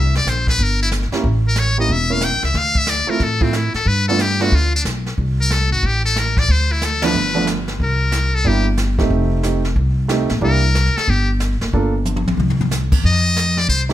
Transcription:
Already playing: upright bass C2, muted trumpet E5
0.15 muted trumpet D5, snare
0.25 upright bass A#1, muted trumpet C5, snare, hi-hat pedal
0.47 muted trumpet B4, kick, snare
0.59 upright bass G1, brush sweep, kick
0.63 muted trumpet A#4
0.82 muted trumpet E4
0.92 snare, hi-hat pedal
1.02 snare
1.11 grand piano A#3 C#4 E4 G4, muted upright bass stroke, snare
1.23 upright bass A1, brush sweep, kick
1.48 muted trumpet A#4
1.56 muted trumpet C#5, snare, hi-hat pedal
1.78 grand piano A#3 C#4 E4 G4, muted trumpet D#5
1.88 upright bass E1, brush sweep, kick
1.92 muted trumpet E5
2.10 grand piano A#3 C#4 E4 A#4, muted trumpet F5
2.21 muted trumpet G5, snare, hi-hat pedal
2.33 upright bass A#1
2.43 upright bass C#2, muted trumpet E5, snare
2.54 upright bass D2, muted trumpet F5, brush sweep, kick, snare
2.75 muted trumpet E5, kick
2.87 muted trumpet D5, snare, hi-hat pedal
3.07 grand piano A3 C4 E4 F4, muted trumpet A#4, muted upright bass stroke
3.19 upright bass A2, muted trumpet A4, brush sweep, kick, snare
3.41 grand piano A3 C4 E4 F4, muted trumpet C4, kick
3.53 muted trumpet E4, snare, hi-hat pedal
3.74 muted trumpet A4, muted upright bass stroke, snare
3.86 upright bass G2, muted trumpet B4, brush sweep, kick
4.08 grand piano A3 B3 D4 F4, muted trumpet A4
4.19 muted trumpet G4, snare, hi-hat pedal
4.40 grand piano A3 B3 D4 F4, muted trumpet F#4, snare
4.52 upright bass D2, muted trumpet F4, brush sweep, kick
4.76 muted trumpet D4
4.84 upright bass B1, snare, hi-hat pedal
5.06 snare
5.18 upright bass C2, brush sweep, kick
5.41 muted trumpet A#4
5.51 muted trumpet A4, snare, hi-hat pedal
5.71 upright bass G#1, muted trumpet F#4
5.83 upright bass A1, muted trumpet G4, brush sweep, kick
6.05 muted trumpet A4
6.16 muted trumpet A#4, snare, hi-hat pedal
6.37 muted trumpet D5, kick, snare
6.49 upright bass D2, muted trumpet C5, brush sweep, kick
6.72 muted trumpet E4
6.82 muted trumpet A4, snare, hi-hat pedal
7.02 grand piano F3 A3 B3 D4, muted trumpet B4, snare, ride
7.14 upright bass G1, brush sweep
7.34 grand piano F3 A3 B3 D4
7.47 snare, hi-hat pedal
7.68 snare
7.80 upright bass C2, muted trumpet A#4, brush sweep, kick
8.12 snare, hi-hat pedal
8.35 muted trumpet A4
8.45 upright bass G1, grand piano G3 A#3 D4 E4, muted trumpet G4, brush sweep, kick
8.77 snare, hi-hat pedal
8.98 grand piano A3 C4 D#4 G4, kick, snare
9.10 upright bass F1, brush sweep, kick
9.43 grand piano A3 C4 D#4 G4, snare, hi-hat pedal
9.65 snare
9.76 upright bass C2, brush sweep, kick
10.08 grand piano A3 C4 D#4 G4, snare, hi-hat pedal
10.29 upright bass A#1, snare
10.41 upright bass C2, grand piano A#3 D4 E4 G4, muted trumpet A#4, brush sweep, kick
10.75 snare, hi-hat pedal
10.86 snare
10.97 muted trumpet A4, muted upright bass stroke, snare
11.08 upright bass G1, muted trumpet G4, brush sweep, kick
11.40 snare, hi-hat pedal
11.61 upright bass F#1, snare
11.73 upright bass G1, grand piano A#3 D4 F4 A4, brush sweep, kick
12.05 hi-hat pedal, high tom
12.16 high tom
12.26 upright bass A#1, high tom
12.37 upright bass C2, mid tom
12.50 floor tom
12.61 floor tom
12.71 snare, hi-hat pedal
12.92 upright bass E2, kick, crash
13.04 upright bass F2, muted trumpet D#5, brush sweep, kick
13.36 snare, hi-hat pedal
13.57 muted trumpet D5, snare
13.68 upright bass C2, muted trumpet C5, brush sweep, kick
13.89 grand piano A3 C4 D#4 G4, snare

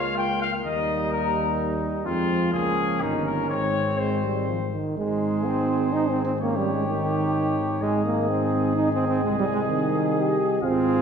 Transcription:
Already playing: tuba C#2, trombone G#3, french horn A#3, flugelhorn F4, trumpet F5
0.18 trumpet G5
0.42 trumpet F5
0.65 tuba D#2, trombone G3, flugelhorn D#4, trumpet D#5
1.11 trumpet A#4
2.06 tuba F2, trombone F3, french horn G#3, flugelhorn C4, trumpet F4
2.52 tuba C#2, french horn A#3, flugelhorn C#4, trumpet G#4
3.01 tuba G1, trombone D#3, trumpet D#4
3.26 trumpet A#4
3.49 tuba G#1, french horn G#3, flugelhorn C4, trumpet C#5
3.98 trombone G#3, trumpet C5
4.24 trombone G3
4.48 trombone F3
4.73 trombone D#3
4.97 tuba G#1, trombone G#3, french horn D#4, flugelhorn G#4, trumpet C5
5.46 trombone C4
5.93 french horn C4, trombone D#4
6.10 trombone C4
6.25 trombone C4
6.40 trombone A#3, french horn C#4, flugelhorn G4, trumpet C#5
6.56 trombone G3
6.73 trombone G#3
6.88 trombone D#3, french horn D#4
7.81 tuba G#1, trombone G#3, flugelhorn G#4, trumpet D#5
8.06 trombone A#3
8.29 trombone C4
8.76 french horn C4, trombone D#4
8.92 trombone C4
9.08 trombone C4
9.23 tuba C2, trombone G#3
9.39 trombone G3
9.54 trombone G#3
9.69 trombone D#3
10.16 french horn G4
10.62 tuba G#1, trombone C4, french horn F4, flugelhorn G#4, trumpet F5

